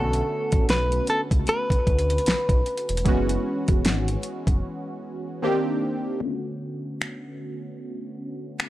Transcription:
Already playing: B1 D3 A3 B3 C#4 F#4 A4
0.13 closed hi-hat
0.52 A1, kick, closed hi-hat
0.69 B1 B4, snare, closed hi-hat
0.92 closed hi-hat
1.07 A4, closed hi-hat
1.31 C#2, kick, closed hi-hat
1.47 B4, closed hi-hat
1.70 D2, kick, closed hi-hat
1.87 D2, kick, closed hi-hat
1.99 closed hi-hat
2.10 closed hi-hat
2.18 closed hi-hat
2.26 B1, snare, closed hi-hat
2.49 B1, kick, closed hi-hat
2.66 closed hi-hat
2.77 closed hi-hat
2.89 E1, closed hi-hat
2.97 closed hi-hat
3.04 F#1 E3 G#3 B3 C#4, kick, closed hi-hat
3.09 F#4
3.29 closed hi-hat
3.68 E1, kick, closed hi-hat
3.85 G#1, snare, closed hi-hat
4.08 closed hi-hat
4.23 closed hi-hat
4.47 F#1, kick, closed hi-hat
5.42 D#3 A#3 C4 D4 G4
6.20 D3 A3 B3 C#4
6.24 F4
6.31 F#4
7.02 finger snap
8.60 finger snap

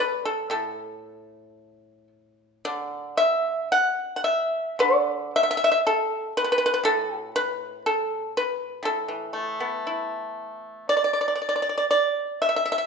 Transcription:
Already playing: A2
0.00 B4
0.25 A4
0.50 A2 A4
2.65 D3 D5
3.17 E5
3.72 F#5
4.16 F#5
4.24 E5
4.79 D3 D5
5.36 E5
5.43 E5
5.51 E5
5.57 E5
5.64 E5
5.72 E5
5.87 A4
6.37 B4
6.44 B4
6.52 B4
6.58 B4
6.66 B4
6.74 B4
6.84 A2 A4
7.16 F#4
7.36 B4
7.86 A4
8.37 B4
8.83 A2 A4
9.08 E3
9.33 A3
9.60 B3
9.87 E4
10.89 D5
10.97 D5
11.04 D5
11.13 D5
11.21 D5
11.28 D5
11.35 D5
11.42 D5
11.49 D5
11.56 D5
11.62 D5
11.69 D5
11.78 D5
11.91 D5
12.42 E5
12.49 E5
12.56 E5
12.65 E5
12.72 E5
12.78 E5

